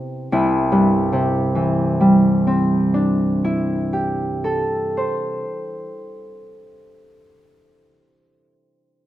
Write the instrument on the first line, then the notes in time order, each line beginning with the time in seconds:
harp
Already playing: C3 B3 E4 G4 B4
0.32 C2 E4
0.72 G2
1.13 C3
1.55 E3
2.01 G3
2.47 C4
2.94 D4
3.44 E4
3.93 G4
4.44 A4
4.97 C5